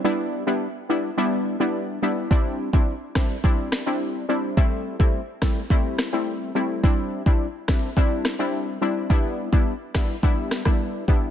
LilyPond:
<<
  \new Staff \with { instrumentName = "Synth stab" } { \time 4/4 \key c \major \tempo 4 = 106 <g b d' e'>8. <g b d' e'>16 r8 <g b d' e'>16 r16 <g b d' e'>8. <g b d' e'>8. <g b d' e'>8 | <g c' d' e'>8. <g c' d' e'>16 r8 <g c' d' e'>16 r16 <g c' d' e'>8. <g c' d' e'>8. <g c' d' e'>8 | <g a c' e'>8. <g a c' e'>16 r8 <g a c' e'>16 r16 <g a c' e'>8. <g a c' e'>8. <g a c' e'>8 | <g c' d' e'>8. <g c' d' e'>16 r8 <g c' d' e'>16 r16 <g c' d' e'>8. <g c' d' e'>8. <g c' d' e'>8 |
<g b d' e'>8. <g b d' e'>16 r8 <g b d' e'>16 r16 <g b d' e'>8. <g b d' e'>8. <g b d' e'>8 | }
  \new DrumStaff \with { instrumentName = "Drums" } \drummode { \time 4/4 r4 r4 r4 r4 | bd8. bd16 r8 <bd ss sn>8 bd8 <ss sn>8 r4 | bd8. bd16 r8 <bd ss sn>8 bd8 <ss sn>8 r4 | bd8. bd16 r8 <bd ss sn>8 bd8 <ss sn>8 r4 |
bd8. bd16 r8 <bd ss sn>8 bd8 <ss sn>16 <bd ss>16 r8 bd8 | }
>>